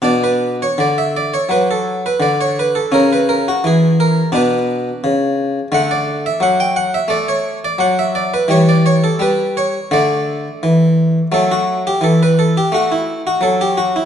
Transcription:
<<
  \new Staff \with { instrumentName = "Harpsichord" } { \time 4/4 \key b \minor \tempo 4 = 85 d''16 b'8 cis''16 d''16 e''16 d''16 cis''16 b'16 a'8 b'16 d''16 cis''16 b'16 a'16 | ais'16 b'16 ais'16 fis'16 gis'8 ais'8 b'2 | fis''16 d''8 e''16 fis''16 g''16 fis''16 e''16 d''16 cis''8 d''16 fis''16 e''16 d''16 b'16 | cis''16 d''16 cis''16 a'16 b'8 cis''8 d''2 |
a'16 fis'8 g'16 a'16 b'16 a'16 g'16 fis'16 e'8 fis'16 a'16 g'16 fis'16 e'16 | }
  \new Staff \with { instrumentName = "Harpsichord" } { \clef bass \time 4/4 \key b \minor << { d'1 | cis'2 d'2 | a1 | g2 a2 |
a1 | } \\ { b,4 d4 fis4 d4 | cis4 e4 b,4 cis4 | d4 fis4 a4 fis4 | e4 g4 d4 e4 |
fis4 e4 a4 fis4 | } >> }
>>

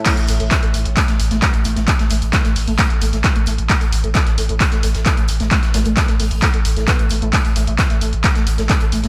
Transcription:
<<
  \new Staff \with { instrumentName = "Analog synth lead" } { \time 4/4 \key c \major \tempo 4 = 132 a16 r16 a16 a16 r16 a16 a16 r16 a16 a16 r16 a16 a16 r16 a16 a16 | r16 a16 a16 r16 a16 a16 r16 a16 a16 r16 a16 a16 r16 a16 a16 r16 | a16 a16 r16 a16 a16 r16 a16 a16 r16 a16 a16 r16 a16 a16 r16 a16 | a16 r16 a16 a16 r16 a16 a16 r16 a16 a16 r16 a16 b16 a16 a16 a16 |
a16 r16 a16 a16 r16 a16 a16 r16 a16 a16 r16 a16 a16 r16 a16 a16 | }
  \new Staff \with { instrumentName = "Sub bass" } { \clef bass \time 4/4 \key c \major r16 a,,16 a,,16 a,,16 r16 a,,16 a,,16 a,,16 r16 a,,16 a,,16 a,,16 r16 a,,16 a,,16 a,,16 | r16 a,,16 a,,16 a,,16 r16 a,,16 a,,16 a,,16 r16 a,,16 a,,16 a,,16 r16 a,,16 a,,16 a,,16 | r16 a,,16 a,,16 a,,16 r16 a,,16 a,,16 a,,16 r16 a,,16 a,,16 a,,16 r16 a,,16 a,,16 a,,16 | r16 a,,16 a,,16 a,,16 r16 a,,16 a,,16 a,,16 r16 a,,16 a,,16 a,,16 r16 a,,16 a,,16 a,,16 |
r16 a,,16 a,,16 a,,16 r16 a,,16 a,,16 a,,16 r16 a,,16 a,,16 a,,16 r16 a,,16 a,,16 a,,16 | }
  \new DrumStaff \with { instrumentName = "Drums" } \drummode { \time 4/4 <hc cymc hh bd>16 hh16 <hh hho>16 hh16 <hc hh bd sn>16 <hh sn>16 <hh hho>16 hh16 <hc hh bd>16 <hh sn>16 <hh hho>16 <hh sn>16 <hc hh bd sn>16 hh16 <hh hho>16 <hh sn>16 | <hc hh bd>16 <hh sn>16 <hh hho>16 hh16 <hc hh bd sn>16 <hh sn>16 hho16 hh16 <hc hh bd>16 hh16 <hh hho>16 <hh sn>16 <hc hh bd sn>16 hh16 <hh hho>16 hh16 | <hc hh bd>16 hh16 <hh hho>16 hh16 <hc hh bd sn>16 <hh sn>16 <hh hho>16 hh16 <hc hh bd>16 <hh sn>16 <hh hho>16 <hh sn>16 <hc hh bd sn>16 hh16 <hh hho>16 <hh sn>16 | <hc hh bd>16 <hh sn>16 <hh hho sn>16 hh16 <hc hh bd sn>16 <hh sn>16 hho16 hh16 <hc hh bd>16 hh16 <hh hho>16 <hh sn>16 <hc hh bd sn>16 hh16 <hh hho>16 hh16 |
<hc hh bd>16 hh16 <hh hho>16 hh16 <hc hh bd sn>16 <hh sn>16 <hh hho>16 hh16 <hc hh bd>16 <hh sn>16 <hh hho>16 <hh sn>16 <hc hh bd sn>16 hh16 <hh hho>16 <hh sn>16 | }
>>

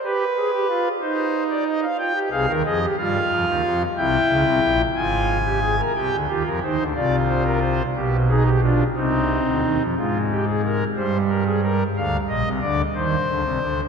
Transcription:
<<
  \new Staff \with { instrumentName = "Pipe organ" } { \time 6/8 \key f \minor \tempo 4. = 60 << { b'4. c''8. d''16 ees''16 f''16 | g''8 f''8 ees''8 f''4. | g''4. aes''4. | g''8 g'16 bes'16 c''8 d''8 c''16 bes'16 c''8 |
g'8 aes'16 g'16 f'8 ees'4. | f'8 g'16 aes'16 bes'8 c''8 bes'16 aes'16 bes'8 | f''8 ees''8 d''8 c''4. | } \\ { g'8 aes'16 g'16 f'8 ees'4. | f'16 g'16 aes'16 bes'16 aes'16 g'16 f'4. | e'4. f'8. g'16 aes'16 bes'16 | g'8 f'8 ees'8 f'4. |
r8 ees'8 d'8 c'4. | r2. | r2. | } >> }
  \new Staff \with { instrumentName = "Pipe organ" } { \clef bass \time 6/8 \key f \minor r2. | r8 <c, c>16 <ees, ees>16 <f, f>8 <g, g>8 <f, f>16 <ees, ees>16 <f, f>8 | <c, c>8 <des, des>16 <c, c>16 <bes,, bes,>8 <aes,, aes,>4. | <c, c>16 <d, d>16 <ees, ees>16 <f, f>16 <ees, ees>16 <d, d>16 <c, c>4. |
<b,, b,>4. <c, c>8. <d, d>16 <ees, ees>16 <f, f>16 | <aes, aes>4. <g, g>4. | <d, d>8 <bes,, bes,>16 <c, c>16 <d, d>8 <ees, ees>8 <d, d>16 <c, c>16 <d, d>8 | }
>>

